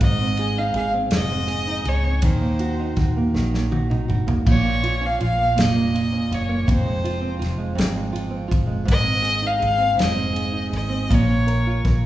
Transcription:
0.00 0.71 G#1 loud
0.00 1.11 G#2 medium
0.00 0.20 G#3 medium
0.00 0.21 C4 medium
0.00 0.60 D#5 loud
0.00 kick medium
0.00 ride medium
0.21 0.92 C4 medium
0.37 0.75 G#4 medium
0.37 ride soft
0.57 1.66 D#4 medium
0.57 0.76 F5 medium
0.74 1.09 G#1 medium
0.74 1.46 G#4 medium
0.74 0.93 F5 medium
0.74 ride soft
0.94 1.29 C4 medium
1.11 1.82 F1 loud
1.11 2.30 G#2 medium
1.11 snare loud
1.11 ride medium
1.15 1.90 D#5 loud
1.31 2.02 C4 medium
1.48 1.84 G#4 medium
1.48 ride soft
1.67 2.79 D#4 medium
1.85 2.20 C#2 medium
1.85 2.30 G#4 medium
1.85 2.24 C#5 medium
1.85 ride soft
2.03 2.30 C4 medium
2.22 2.93 D#2 loud
2.22 3.33 D#3 medium
2.22 3.04 C5 medium
2.22 kick loud
2.22 ride medium
2.41 3.16 A#3 medium
2.59 2.96 F#4 medium
2.59 ride soft
2.79 3.89 D#4 medium
2.96 3.32 D#2 medium
2.96 3.70 F#4 medium
2.96 kick medium
2.96 snare soft
2.96 ride soft
3.17 3.53 A#3 medium
3.34 4.05 A#1 medium
3.34 4.54 D#3 medium
3.34 snare medium
3.53 4.26 A#3 medium
3.53 snare medium
3.71 4.07 F#4 medium
3.71 high tom medium
3.90 4.53 D#4 medium
3.90 mid tom medium
4.08 4.44 G#1 medium
4.08 4.53 F#4 medium
4.08 mid tom medium
4.27 4.64 A#3 medium
4.27 floor tom medium
4.46 5.17 A#1 loud
4.46 5.55 A#2 medium
4.46 5.07 C#5 loud
4.46 kick loud
4.46 crash medium
4.64 5.37 A#3 soft
4.83 5.20 F4 medium
4.83 ride soft
5.01 6.11 C#4 medium
5.06 5.22 F5 medium
5.20 5.55 A#1 medium
5.20 5.94 F4 medium
5.20 5.62 F5 loud
5.20 ride soft
5.38 5.74 A#3 soft
5.56 6.27 F1 medium
5.56 6.67 A#2 medium
5.56 snare loud
5.56 ride medium
5.61 6.36 D#5 medium
5.75 6.48 A#3 medium
5.95 6.31 F4 medium
5.95 ride soft
6.12 6.75 C#4 medium
6.31 6.66 F#1 medium
6.31 7.04 F4 medium
6.31 6.69 C#5 medium
6.31 ride soft
6.49 6.75 A#3 medium
6.67 7.37 F1 loud
6.67 7.74 F2 medium
6.67 kick loud
6.67 ride medium
6.71 7.48 C5 loud
6.85 7.57 G#3 soft
7.04 7.38 F4 medium
7.04 ride soft
7.21 8.30 C4 medium
7.39 7.76 F1 medium
7.39 8.11 F4 medium
7.39 ride soft
7.43 snare soft
7.58 7.93 G#3 medium
7.75 8.47 G#1 medium
7.75 8.85 F2 medium
7.75 ride medium
7.80 snare loud
7.94 8.66 G#3 medium
8.12 8.47 F4 medium
8.12 ride soft
8.30 9.03 C4 medium
8.48 8.86 F#1 medium
8.48 8.94 F4 medium
8.48 kick loud
8.52 ride soft
8.66 9.03 G#3 medium
8.85 9.58 G#1 loud
8.85 9.95 G#2 medium
8.85 kick loud
8.85 ride medium
8.91 9.48 D#5 loud
9.03 9.77 C4 soft
9.22 9.58 G#4 medium
9.22 ride soft
9.42 10.50 D#4 medium
9.46 9.63 F5 loud
9.60 9.97 G#1 loud
9.60 10.31 G#4 medium
9.60 ride soft
9.64 9.97 F5 loud
9.78 10.14 C4 medium
9.96 10.69 F1 medium
9.96 11.09 G#2 medium
9.96 ride medium
10.00 10.70 D#5 loud
10.00 snare loud
10.15 10.88 C4 medium
10.33 10.69 G#4 medium
10.33 ride medium
10.52 11.16 D#4 medium
10.70 11.08 G#1 medium
10.70 11.16 G#4 medium
10.70 ride soft
10.76 11.15 D#5 medium
10.89 11.16 C4 medium
11.09 11.81 A#1 loud
11.09 12.06 A#2 medium
11.09 kick loud
11.09 ride medium
11.14 11.96 C#5 medium
11.28 12.04 C#4 medium
11.47 11.85 A#4 medium
11.47 ride soft
11.67 12.06 F4 medium
11.85 12.06 A#1 loud
11.85 12.06 A#4 medium
11.85 kick medium
11.85 snare soft
11.85 ride soft

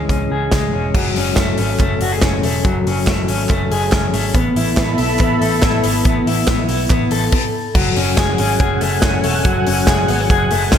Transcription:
0.00 0.94 E3 medium
0.00 0.52 G#3 medium
0.00 0.10 C#4 medium
0.00 0.31 G#4 medium
0.09 0.27 C#2 medium
0.09 0.73 C#4 medium
0.09 kick loud
0.09 closed hi-hat medium
0.30 0.48 C#2 medium
0.30 1.41 G#4 medium
0.52 0.70 C#2 medium
0.52 1.38 G#3 medium
0.52 kick loud
0.52 snare medium
0.52 clap medium
0.52 closed hi-hat medium
0.73 0.91 E1 medium
0.73 1.17 C#4 soft
0.94 1.12 F#1 loud
0.94 2.64 F#3 medium
0.94 kick loud
0.94 crash medium
1.16 1.34 F#1 medium
1.16 1.58 C#4 medium
1.16 open hi-hat medium
1.36 1.54 F#1 loud
1.36 1.80 A3 medium
1.36 kick loud
1.36 snare loud
1.36 clap medium
1.36 closed hi-hat medium
1.58 1.76 G#1 medium
1.58 2.21 C#4 medium
1.58 open hi-hat medium
1.79 1.97 F#1 loud
1.79 2.44 A3 medium
1.79 kick loud
1.79 clap medium
1.79 closed hi-hat medium
2.01 2.18 F#1 medium
2.01 2.12 F#4 medium
2.01 open hi-hat medium
2.12 3.70 G#4 medium
2.21 2.40 F#1 medium
2.21 2.86 C#4 medium
2.21 kick loud
2.21 snare loud
2.21 clap medium
2.21 closed hi-hat medium
2.43 2.61 E1 medium
2.43 3.08 A3 medium
2.43 open hi-hat medium
2.65 2.82 F#1 loud
2.65 4.35 F#3 medium
2.65 kick loud
2.65 closed hi-hat medium
2.86 3.03 F#1 loud
2.86 3.28 C#4 medium
2.86 open hi-hat medium
3.07 3.25 F#1 medium
3.07 3.50 A3 medium
3.07 kick loud
3.07 snare loud
3.07 clap medium
3.07 closed hi-hat medium
3.28 3.46 G#1 medium
3.28 3.91 C#4 medium
3.28 open hi-hat medium
3.49 3.67 F#1 loud
3.49 4.13 A3 medium
3.49 kick loud
3.49 clap medium
3.49 closed hi-hat medium
3.71 3.88 F#1 medium
3.71 4.39 G#4 medium
3.71 open hi-hat medium
3.92 4.10 F#1 medium
3.92 4.39 C#4 medium
3.92 kick loud
3.92 snare loud
3.92 clap medium
3.92 closed hi-hat medium
4.13 4.31 G#1 medium
4.13 4.35 A3 medium
4.13 open hi-hat medium
4.34 4.52 A1 loud
4.34 4.77 B3 medium
4.34 7.30 A4 medium
4.34 7.30 E5 medium
4.34 7.30 B5 medium
4.34 kick loud
4.34 closed hi-hat medium
4.56 4.74 A1 loud
4.56 4.98 E4 medium
4.56 open hi-hat medium
4.77 4.95 A1 loud
4.77 5.19 B3 medium
4.77 kick loud
4.77 snare loud
4.77 clap medium
4.77 closed hi-hat medium
4.98 5.16 B1 medium
4.98 5.62 E4 medium
4.98 open hi-hat medium
5.19 5.37 A1 loud
5.19 5.82 B3 medium
5.19 kick loud
5.19 clap medium
5.19 closed hi-hat medium
5.41 5.59 A1 loud
5.41 7.11 A4 medium
5.41 open hi-hat medium
5.62 5.80 A1 loud
5.62 6.26 E4 medium
5.62 kick loud
5.62 snare loud
5.62 clap medium
5.62 closed hi-hat medium
5.84 6.01 G#1 medium
5.84 6.04 B3 medium
5.84 open hi-hat medium
6.05 6.23 A1 loud
6.05 6.46 B3 medium
6.05 kick loud
6.05 closed hi-hat medium
6.26 6.44 A1 medium
6.26 6.68 E4 medium
6.26 open hi-hat medium
6.47 6.65 A1 loud
6.47 6.90 B3 medium
6.47 kick loud
6.47 snare loud
6.47 clap medium
6.47 closed hi-hat medium
6.69 6.86 B1 medium
6.69 7.37 E4 medium
6.69 open hi-hat medium
6.90 7.08 A1 loud
6.90 7.37 B3 medium
6.90 kick loud
6.90 clap medium
6.90 closed hi-hat medium
7.11 7.29 A1 loud
7.11 8.18 A4 medium
7.11 open hi-hat medium
7.32 kick loud
7.32 crash loud
7.75 7.92 F#1 loud
7.75 9.44 F#3 medium
7.75 10.78 F#5 medium
7.75 10.78 G#5 medium
7.75 kick loud
7.75 crash loud
7.96 8.14 F#1 loud
7.96 8.38 C#4 medium
7.96 open hi-hat medium
8.17 8.35 F#1 loud
8.17 8.59 G#4 medium
8.17 kick loud
8.17 snare loud
8.17 clap medium
8.17 closed hi-hat medium
8.38 8.57 G#1 loud
8.38 9.01 C#4 medium
8.38 open hi-hat medium
8.60 8.78 F#1 loud
8.60 9.87 G#4 medium
8.60 kick loud
8.60 closed hi-hat medium
8.81 8.99 F#1 medium
8.81 9.24 A3 medium
8.81 open hi-hat medium
9.02 9.20 F#1 medium
9.02 9.66 C#4 medium
9.02 kick loud
9.02 snare loud
9.02 clap medium
9.02 closed hi-hat medium
9.24 9.42 E1 medium
9.24 10.51 A3 medium
9.24 open hi-hat medium
9.45 9.63 F#1 loud
9.45 10.78 F#3 medium
9.45 kick loud
9.45 closed hi-hat medium
9.67 9.85 F#1 loud
9.67 10.09 C#4 medium
9.67 open hi-hat medium
9.87 10.05 F#1 medium
9.87 10.29 G#4 medium
9.87 kick loud
9.87 snare loud
9.87 clap medium
9.87 closed hi-hat medium
10.08 10.26 G#1 loud
10.08 10.20 B3 medium
10.08 open hi-hat medium
10.20 10.71 C#4 soft
10.30 10.48 F#1 loud
10.30 10.78 G#4 medium
10.30 kick loud
10.30 closed hi-hat medium
10.51 10.69 F#1 medium
10.51 10.78 A3 medium
10.51 open hi-hat medium
10.72 10.78 F#1 loud
10.72 10.78 C#4 medium
10.72 kick loud
10.72 snare loud
10.72 clap medium
10.72 closed hi-hat medium

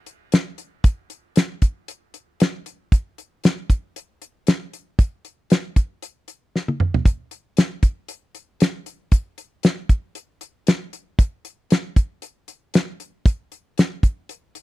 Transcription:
0.06 closed hi-hat medium
0.32 snare loud
0.32 closed hi-hat medium
0.58 closed hi-hat medium
0.84 kick loud
0.84 closed hi-hat medium
1.10 closed hi-hat medium
1.36 snare loud
1.36 closed hi-hat medium
1.62 kick medium
1.62 closed hi-hat medium
1.88 closed hi-hat medium
2.14 closed hi-hat medium
2.40 snare loud
2.40 closed hi-hat medium
2.66 closed hi-hat medium
2.92 kick loud
2.92 closed hi-hat medium
3.18 closed hi-hat medium
3.44 snare loud
3.44 closed hi-hat medium
3.70 kick medium
3.70 closed hi-hat medium
3.96 closed hi-hat medium
4.22 closed hi-hat medium
4.47 snare loud
4.47 closed hi-hat medium
4.73 closed hi-hat medium
4.99 kick loud
4.99 closed hi-hat medium
5.25 closed hi-hat medium
5.50 snare loud
5.50 closed hi-hat medium
5.76 kick medium
5.76 closed hi-hat medium
6.02 closed hi-hat medium
6.28 closed hi-hat medium
6.56 snare medium
6.68 high tom medium
6.80 mid tom medium
6.94 floor tom medium
7.05 kick loud
7.05 closed hi-hat medium
7.31 closed hi-hat medium
7.57 snare loud
7.57 closed hi-hat medium
7.83 kick medium
7.83 closed hi-hat medium
8.08 closed hi-hat medium
8.35 closed hi-hat medium
8.60 snare loud
8.60 closed hi-hat medium
8.86 closed hi-hat medium
9.12 kick loud
9.12 closed hi-hat medium
9.38 closed hi-hat medium
9.63 snare loud
9.63 closed hi-hat medium
9.89 kick medium
9.89 closed hi-hat medium
10.15 closed hi-hat medium
10.41 closed hi-hat medium
10.67 snare loud
10.67 closed hi-hat medium
10.93 closed hi-hat medium
11.19 kick loud
11.19 closed hi-hat medium
11.45 closed hi-hat medium
11.70 snare loud
11.70 closed hi-hat medium
11.96 kick medium
11.96 closed hi-hat medium
12.22 closed hi-hat medium
12.48 closed hi-hat medium
12.74 snare loud
12.74 closed hi-hat medium
13.00 closed hi-hat medium
13.26 kick loud
13.26 closed hi-hat medium
13.52 closed hi-hat medium
13.78 snare loud
13.78 closed hi-hat medium
14.03 kick medium
14.03 closed hi-hat medium
14.29 closed hi-hat medium
14.55 closed hi-hat medium

